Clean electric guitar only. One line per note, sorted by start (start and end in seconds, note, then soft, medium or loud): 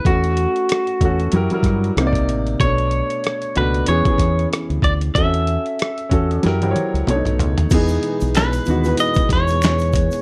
0.06 1.93 F#4 medium
2.61 3.57 C#5 loud
3.58 3.87 B4 medium
3.89 4.48 C#5 medium
4.84 4.93 D5 medium
5.15 6.38 E5 loud
6.38 7.03 D5 loud
8.37 8.96 B4 medium
9.00 9.29 D#5 loud
9.33 10.22 C#5 medium